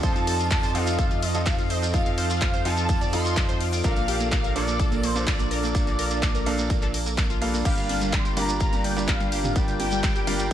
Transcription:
Already playing: synth texture D5 D6
0.03 sub bass F2, grand piano F3 C4 D#4 F4 A4 D#5, analog synth pad F3 C4 D#4 A4, synth pluck C5, analog synth lead A5, kick, closed hi-hat, shekere
0.16 synth pluck F4, closed hi-hat, shekere
0.27 synth pluck A4, open hi-hat
0.39 synth pluck F4, shekere
0.50 synth pluck F4, analog synth lead A5, kick, clap, closed hi-hat, shekere
0.63 synth pluck C5, closed hi-hat, shekere
0.75 grand piano F3 C4 D#4 F4 A4 D#5, synth pluck F4, analog synth lead F5, open hi-hat
0.87 synth pluck F4, closed hi-hat, shekere
0.99 synth pluck A4, kick, closed hi-hat, shekere
1.11 synth pluck F4, closed hi-hat, shekere
1.22 synth pluck F4, analog synth lead D#5, open hi-hat
1.34 grand piano F3 C4 D#4 F4 A4 D#5, synth pluck F4, shekere
1.46 analog synth lead F5, kick, clap, closed hi-hat, shekere
1.58 synth pluck F4, closed hi-hat, shekere
1.70 synth pluck C5, analog synth lead D#5, open hi-hat
1.82 synth pluck F4, closed hi-hat, shekere
1.94 grand piano F3 C4 D#4 F4 A4 D#5, synth pluck F4, analog synth pad F4, analog synth lead F5, kick, closed hi-hat, shekere
2.06 synth pluck F4, closed hi-hat, shekere
2.18 synth pluck C5, analog synth lead F5, open hi-hat
2.30 synth pluck F4, shekere
2.41 synth pluck F4, kick, clap, closed hi-hat, shekere
2.54 synth pluck C5, closed hi-hat, shekere
2.65 grand piano F3 C4 D#4 F4 A4 F5, synth pluck F4, analog synth lead A5, open hi-hat
2.77 synth pluck F4, closed hi-hat, shekere
2.89 synth pluck F4, kick, closed hi-hat, shekere
3.01 synth pluck D5, closed hi-hat, shekere
3.13 grand piano F3 C4 D#4 F4 A4 D#5, synth pluck F4, analog synth lead C6, open hi-hat
3.25 synth pluck F4, shekere
3.37 synth pluck F4, kick, clap, closed hi-hat, shekere
3.49 synth pluck C5, closed hi-hat, shekere
3.60 synth pluck F4, open hi-hat
3.73 synth pluck F4, open hi-hat, shekere
3.84 sub bass A#1, grand piano A#2 A#3 D4 F4 A4 D5, analog synth pad A#3 D4 A4, synth pluck A#4, analog synth lead F5, kick, closed hi-hat, shekere
3.96 synth pluck A#3, closed hi-hat, shekere
4.08 synth pluck G4, open hi-hat
4.20 synth pluck A#3, closed hi-hat, shekere
4.32 synth pluck A#3, analog synth lead F5, kick, clap, closed hi-hat, shekere
4.44 synth pluck A#4, closed hi-hat, shekere
4.56 grand piano A#2 A#3 D4 F4 A4 D5, synth pluck A#3, analog synth lead D5, open hi-hat
4.68 synth pluck A#3, closed hi-hat, shekere
4.80 synth pluck A4, kick, closed hi-hat, shekere
4.92 synth pluck A#3, closed hi-hat, shekere
5.03 synth pluck A#3, analog synth lead C5, open hi-hat
5.16 grand piano A#2 A#3 D4 F4 A4 D5, synth pluck A#3, closed hi-hat, shekere
5.27 analog synth lead D5, kick, clap, closed hi-hat, shekere
5.39 synth pluck A#3, closed hi-hat, shekere
5.51 synth pluck A#4, analog synth lead D5, open hi-hat
5.63 synth pluck A#3, closed hi-hat, shekere
5.75 grand piano A#2 A#3 D4 F4 A4 D5, synth pluck A#3, kick, closed hi-hat, shekere
5.87 synth pluck A#3, closed hi-hat, shekere
5.99 synth pluck A#4, open hi-hat
6.10 synth pluck A#3, closed hi-hat, shekere
6.22 synth pluck A#3, kick, clap, closed hi-hat, shekere
6.35 synth pluck A#4, closed hi-hat, shekere
6.46 grand piano A#2 A#3 D4 F4 A4 F5, synth pluck A#3, open hi-hat
6.58 synth pluck A#3, shekere
6.70 synth pluck A#3, kick, closed hi-hat, shekere
6.82 synth pluck A4, clap, closed hi-hat, shekere
6.94 synth pluck A#3, open hi-hat
7.06 synth pluck A#3, closed hi-hat, shekere
7.18 synth pluck A#3, kick, clap, closed hi-hat, shekere
7.30 synth pluck F4, closed hi-hat, shekere
7.41 grand piano G2 A#3 D4 F4 A4 F5, synth pluck A#3, open hi-hat
7.54 synth pluck A#3, open hi-hat, shekere
7.65 sub bass G1, grand piano G2 A#3 D4 F4 G4 D5, analog synth pad G3 D4 F4 A#4, synth pluck G4, synth texture D5 D6, analog synth lead F5, kick, closed hi-hat, crash, shekere
7.77 synth pluck G3, closed hi-hat, shekere
7.89 synth pluck D4, open hi-hat, high conga
8.01 synth pluck G3, closed hi-hat, shekere
8.13 synth pluck G3, analog synth lead C6, kick, clap, closed hi-hat, shekere
8.25 synth pluck G4, closed hi-hat, shekere
8.37 grand piano G2 A#3 D4 F4 G4 D5, synth pluck G3, analog synth lead A#5, open hi-hat, high conga
8.49 synth pluck G3, closed hi-hat, shekere
8.60 synth pluck F4, analog synth lead A#5, kick, closed hi-hat, shekere
8.73 synth pluck G3, closed hi-hat, high conga, shekere
8.84 synth pluck G3, analog synth lead G5, open hi-hat
8.97 grand piano G2 A#3 D4 F4 G4 D5, synth pluck G3, closed hi-hat, shekere
9.08 analog synth lead F5, kick, clap, closed hi-hat, high conga, shekere
9.20 synth pluck G3, closed hi-hat, shekere
9.32 synth pluck G4, open hi-hat
9.44 synth pluck G3, closed hi-hat, mid tom, high conga, shekere
9.56 grand piano G2 A#3 D4 F4 G4 D5, synth pluck G3, analog synth lead G5, kick, closed hi-hat, shekere
9.68 synth pluck G3, closed hi-hat, shekere
9.80 synth pluck G4, analog synth lead G5, open hi-hat, high conga
9.91 synth pluck G3, closed hi-hat, shekere
10.03 kick, clap, closed hi-hat, shekere
10.16 synth pluck G4, closed hi-hat, shekere
10.27 grand piano G2 A#3 D4 F4 G4 F5, synth pluck G3, open hi-hat, high conga
10.39 synth pluck G3, shekere

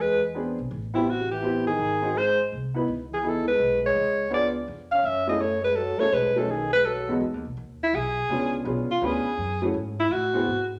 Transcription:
Already playing: upright bass E2
0.00 trombone G#3, alto saxophone B4
0.35 upright piano B3 C4 D4 G#4
0.59 upright bass B1
0.71 upright bass A1
0.94 trombone C3, upright piano B3 C4 E4 G4, alto saxophone E4
1.07 trombone C3, alto saxophone F#4
1.31 trombone E3, alto saxophone G4
1.42 upright piano B3 C4 E4 G4
1.66 trombone D#3, alto saxophone G#4
1.79 upright bass G#1
2.02 upright piano C4 D#4 F#4 G#4
2.16 trombone G#3, alto saxophone C5
2.52 upright bass C2
2.75 upright piano B3 D#4 E4 B4
2.88 upright bass C#2
3.11 trombone E3, alto saxophone G#4
3.23 trombone E3, upright piano B3 D#4 E4 G#4
3.28 alto saxophone A4
3.46 trombone G#3, alto saxophone B4
3.60 upright bass B1
3.83 trombone G#3, alto saxophone C#5
3.96 upright bass C#2
4.31 upright piano B3 D4 F4 G#4, trombone B3, alto saxophone D5
4.68 upright bass F2
4.92 trombone C#4, alto saxophone F5
5.03 upright bass F#2, trombone C#4, alto saxophone E5
5.27 upright piano A3 C#4 E4 G#4, trombone B3, alto saxophone D#5
5.40 trombone A3, alto saxophone C#5
5.63 trombone G#3, alto saxophone B4
5.76 trombone F#3, alto saxophone A4
5.98 trombone A3, upright piano A3 C#4 D#4 G#4, alto saxophone C#5, muted upright bass stroke
6.11 upright bass B1, trombone G#3, alto saxophone B4
6.36 trombone F#3, upright piano A3 C#4 D#4 G#4, alto saxophone A4
6.50 trombone D#3, alto saxophone G#4
6.73 trombone G#3, alto saxophone B4
6.85 trombone F#3, alto saxophone A4
7.09 upright piano E2 G#3 B3 D#4 F#4
7.21 upright bass E2
7.34 upright bass D#2
7.45 upright bass B1
7.57 upright bass D#2
7.83 alto saxophone E4
7.93 upright bass B1, alto saxophone G#4
8.29 upright bass C#2, upright piano B3 C#4 D4 F4 G#4
8.65 upright bass B1, upright piano B3 C#4 D4 F4 G#4
8.89 alto saxophone F4, muted upright bass stroke
9.01 upright bass D2, upright piano B3 C#4 D4 F4 B4
9.06 alto saxophone G#4
9.24 muted upright bass stroke
9.38 upright bass F#2
9.62 upright piano A3 C#4 E4 F#4 G#4
9.74 upright bass G#2
9.99 alto saxophone E4
10.11 upright bass A2, alto saxophone F#4
10.34 upright piano B3 C4 E4 F#4 G#4
10.47 upright bass G#2

